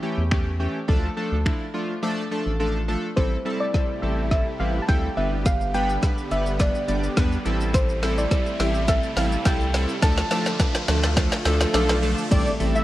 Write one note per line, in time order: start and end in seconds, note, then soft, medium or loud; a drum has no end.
0.02 0.22 E3 medium
0.02 0.22 A3 medium
0.02 0.22 C#4 medium
0.02 0.23 G4 medium
0.18 0.68 E2 medium
0.31 0.51 E3 medium
0.31 0.51 A3 medium
0.31 0.51 C#4 medium
0.31 0.51 G4 loud
0.31 finger snap loud
0.31 kick loud
0.59 0.79 E3 medium
0.59 0.79 A3 medium
0.59 0.80 C#4 medium
0.59 0.80 G4 medium
0.88 1.09 D2 loud
0.88 1.08 F3 loud
0.88 1.08 A3 loud
0.88 1.08 D4 loud
0.88 1.08 A4 loud
0.88 kick loud
1.16 1.36 F3 medium
1.16 1.37 A3 medium
1.16 1.37 D4 medium
1.16 1.37 A4 loud
1.32 1.52 D2 medium
1.45 1.65 F3 medium
1.45 1.65 A3 medium
1.45 1.65 D4 medium
1.45 1.65 E4 medium
1.45 finger snap loud
1.45 kick loud
1.74 1.94 F3 medium
1.74 1.94 A3 medium
1.74 1.94 D4 medium
1.74 1.94 F4 loud
2.02 2.22 F3 loud
2.02 2.22 A3 loud
2.02 2.22 D4 loud
2.02 2.23 A4 loud
2.31 2.51 F3 medium
2.31 2.51 A3 medium
2.31 2.51 D4 medium
2.31 2.51 A4 medium
2.46 2.96 A1 medium
2.60 2.79 F3 medium
2.60 2.80 A3 medium
2.60 2.80 D4 medium
2.60 2.80 A4 medium
2.88 3.08 F3 medium
2.88 3.08 A3 medium
2.88 3.08 D4 medium
2.88 3.08 A4 medium
3.16 3.37 A1 medium
3.16 5.15 C3 medium
3.16 3.36 G3 medium
3.16 5.15 A3 medium
3.16 3.37 C4 medium
3.16 3.37 E4 medium
3.16 5.15 E4 medium
3.16 7.42 G4 medium
3.16 3.37 A4 loud
3.16 3.62 C5 medium
3.16 kick loud
3.16 snare medium
3.16 riser medium
3.45 3.65 G3 medium
3.45 3.65 C4 medium
3.45 3.65 E4 medium
3.45 3.65 A4 loud
3.60 4.04 D5 loud
3.74 3.94 G3 medium
3.74 3.94 C4 medium
3.74 3.94 E4 medium
3.74 3.94 A4 medium
3.74 kick loud
3.74 snare medium
4.02 4.43 A1 medium
4.02 4.22 G3 medium
4.02 4.22 C4 medium
4.02 4.22 E4 medium
4.02 4.23 A4 medium
4.02 4.30 E5 medium
4.31 4.51 G3 medium
4.31 4.51 C4 medium
4.31 4.51 E4 medium
4.31 4.51 A4 medium
4.31 4.44 E5 loud
4.31 kick loud
4.31 snare medium
4.60 4.80 A1 medium
4.60 4.80 G3 medium
4.60 4.80 C4 medium
4.60 4.80 E4 medium
4.60 4.80 B4 medium
4.60 4.82 F5 medium
4.82 4.89 A5 medium
4.88 5.09 D2 loud
4.88 5.08 G3 medium
4.88 5.08 C4 medium
4.88 5.08 E4 medium
4.88 5.08 A4 loud
4.88 5.15 G5 loud
4.88 kick loud
4.88 snare medium
5.17 5.98 G1 loud
5.17 7.44 D3 medium
5.17 5.63 G3 medium
5.17 7.43 G3 medium
5.17 5.63 B3 medium
5.17 7.43 B3 medium
5.17 5.64 D4 medium
5.17 5.64 B4 medium
5.17 5.47 E5 loud
5.46 5.75 F5 loud
5.46 kick loud
5.46 snare medium
5.46 closed hi-hat medium
5.46 shaker medium
5.61 shaker medium
5.74 5.94 G3 medium
5.74 5.94 B3 medium
5.74 5.94 D4 medium
5.74 5.94 B4 loud
5.74 6.33 G5 loud
5.74 closed hi-hat soft
5.74 shaker soft
5.90 shaker medium
6.02 6.22 G3 medium
6.02 6.22 B3 medium
6.02 6.22 D4 medium
6.02 6.23 B4 medium
6.02 kick loud
6.02 snare medium
6.02 closed hi-hat medium
6.02 shaker medium
6.18 shaker medium
6.31 6.72 G1 medium
6.31 6.51 G3 medium
6.31 6.51 B3 medium
6.31 6.51 D4 medium
6.31 6.51 B4 medium
6.31 6.58 E5 medium
6.31 closed hi-hat soft
6.31 shaker soft
6.46 shaker medium
6.59 6.79 G3 medium
6.59 6.79 B3 medium
6.59 6.80 D4 medium
6.59 6.80 B4 medium
6.59 7.42 D5 medium
6.59 kick loud
6.59 snare medium
6.59 closed hi-hat medium
6.59 shaker medium
6.75 shaker medium
6.88 7.09 G1 medium
6.88 7.08 G3 medium
6.88 7.08 B3 medium
6.88 7.08 D4 medium
6.88 7.08 D5 medium
6.88 closed hi-hat medium
6.88 shaker medium
7.04 shaker medium
7.17 7.38 E2 loud
7.17 7.37 G3 loud
7.17 7.37 B3 medium
7.17 7.37 D4 medium
7.17 7.37 B4 loud
7.17 kick loud
7.17 snare medium
7.17 closed hi-hat medium
7.17 shaker medium
7.32 shaker soft
7.45 8.27 A1 loud
7.45 10.00 C3 medium
7.45 7.92 G3 loud
7.45 10.00 G3 medium
7.45 10.00 A3 medium
7.45 7.92 C4 medium
7.45 7.92 E4 medium
7.45 10.00 E4 medium
7.45 7.92 A4 loud
7.45 closed hi-hat medium
7.45 shaker medium
7.61 shaker medium
7.74 8.19 C5 medium
7.74 kick loud
7.74 snare medium
7.74 closed hi-hat medium
7.74 shaker medium
7.89 shaker medium
8.02 8.22 G3 loud
8.02 8.22 C4 medium
8.02 8.22 E4 medium
8.02 8.23 A4 loud
8.02 snare medium
8.02 open hi-hat medium
8.02 shaker soft
8.18 8.61 D5 medium
8.18 shaker medium
8.31 8.51 G3 medium
8.31 8.51 C4 medium
8.31 8.51 E4 medium
8.31 8.51 A4 medium
8.31 kick loud
8.31 snare medium
8.31 closed hi-hat medium
8.31 shaker medium
8.46 shaker medium
8.60 9.00 A1 medium
8.60 8.79 G3 medium
8.60 8.80 C4 medium
8.60 8.80 E4 medium
8.60 8.80 G4 medium
8.60 8.88 E5 medium
8.60 snare medium
8.60 open hi-hat medium
8.60 shaker medium
8.75 shaker medium
8.88 9.08 G3 medium
8.88 9.08 C4 medium
8.88 9.08 E4 medium
8.88 9.08 A4 medium
8.88 9.18 E5 loud
8.88 kick loud
8.88 snare medium
8.88 closed hi-hat medium
8.88 shaker medium
9.03 shaker medium
9.17 9.37 A1 medium
9.17 9.37 G3 medium
9.17 9.37 C4 medium
9.17 9.37 E4 medium
9.17 9.37 A4 medium
9.17 9.47 F5 medium
9.17 snare medium
9.17 open hi-hat medium
9.17 shaker medium
9.32 shaker medium
9.45 9.86 C2 loud
9.45 9.65 G3 loud
9.45 9.65 C4 medium
9.45 9.65 E4 medium
9.45 9.65 A4 loud
9.45 10.04 G5 loud
9.45 kick loud
9.45 snare loud
9.45 closed hi-hat medium
9.45 shaker medium
9.61 shaker soft
9.74 9.94 G3 medium
9.74 9.94 C4 medium
9.74 9.94 E4 medium
9.74 9.94 A4 medium
9.74 snare loud
9.74 open hi-hat medium
9.74 shaker medium
9.89 shaker medium
10.02 10.23 D2 loud
10.02 12.29 D3 medium
10.02 10.22 F3 loud
10.02 12.29 F3 medium
10.02 10.22 A3 medium
10.02 12.29 A3 medium
10.02 10.22 D4 medium
10.02 12.29 F4 medium
10.02 10.22 A4 loud
10.02 11.70 A5 loud
10.02 kick loud
10.02 snare loud
10.02 closed hi-hat medium
10.02 shaker medium
10.18 snare loud
10.18 shaker medium
10.31 10.51 F3 loud
10.31 10.51 A3 medium
10.31 10.51 D4 medium
10.31 10.51 A4 loud
10.31 snare loud
10.31 open hi-hat medium
10.31 shaker soft
10.46 snare loud
10.46 shaker medium
10.59 10.79 F3 medium
10.59 10.79 A3 medium
10.59 10.80 D4 medium
10.59 10.80 B4 medium
10.59 kick loud
10.59 snare loud
10.59 closed hi-hat medium
10.59 shaker medium
10.75 snare loud
10.75 shaker medium
10.88 11.29 D2 medium
10.88 11.08 F3 medium
10.88 11.08 A3 medium
10.88 11.08 D4 medium
10.88 11.08 A4 loud
10.88 snare loud
10.88 open hi-hat medium
10.88 shaker medium
11.03 snare loud
11.03 shaker medium
11.16 11.36 F3 medium
11.16 11.37 A3 medium
11.16 11.37 D4 medium
11.16 11.37 A4 loud
11.16 kick loud
11.16 snare loud
11.16 closed hi-hat medium
11.16 shaker medium
11.32 snare loud
11.32 shaker medium
11.45 11.66 D2 loud
11.45 11.65 F3 medium
11.45 11.65 A3 medium
11.45 11.65 D4 medium
11.45 11.65 A4 loud
11.45 snare loud
11.45 open hi-hat medium
11.45 shaker medium
11.61 snare loud
11.61 shaker medium
11.74 12.15 B1 loud
11.74 11.94 F3 loud
11.74 11.94 A3 loud
11.74 11.94 D4 loud
11.74 11.94 A4 loud
11.74 snare loud
11.74 closed hi-hat medium
11.74 shaker medium
11.89 snare loud
11.89 shaker soft
12.02 12.22 F3 medium
12.02 12.22 A3 medium
12.02 12.22 D4 medium
12.02 12.22 A4 loud
12.02 open hi-hat medium
12.02 shaker medium
12.18 shaker medium
12.31 12.52 A1 loud
12.31 12.84 C3 medium
12.31 12.51 G3 loud
12.31 12.84 G3 medium
12.31 12.51 A3 loud
12.31 12.84 A3 medium
12.31 12.51 C4 medium
12.31 12.51 E4 medium
12.31 12.84 E4 medium
12.31 12.51 A4 loud
12.31 12.51 D5 loud
12.31 kick loud
12.31 closed hi-hat medium
12.31 crash loud
12.31 impact medium
12.31 shaker medium
12.47 shaker medium
12.60 12.84 A1 medium
12.60 12.79 G3 medium
12.60 12.79 A3 medium
12.60 12.80 C4 medium
12.60 12.80 E4 medium
12.60 12.80 A4 medium
12.60 open hi-hat medium
12.60 shaker soft
12.75 12.84 E5 medium
12.75 shaker medium